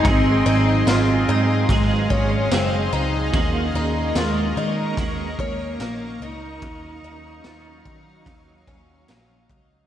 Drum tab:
RD |x-x-x-x-|x-x-x-x-|x-x-x-x-|
TB |--x---x-|--x---x-|--x---x-|
SD |--o---o-|--o---o-|--o---o-|
BD |o---oo--|o---oo--|o--ooo-o|